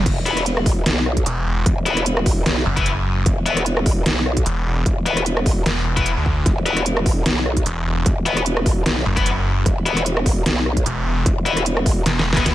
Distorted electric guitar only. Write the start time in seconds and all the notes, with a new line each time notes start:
0.26 B3 E4 B4
1.86 B3 E4 B4
2.77 B3 E4 B4
3.46 B3 E4 B4
5.06 B3 E4 B4
5.97 B3 E4 B4
6.66 B3 E4 B4
8.26 B3 E4 B4
9.16 B3 E4 B4
9.86 B3 E4 B4
11.46 B3 E4 B4
12.37 B3 E4 B4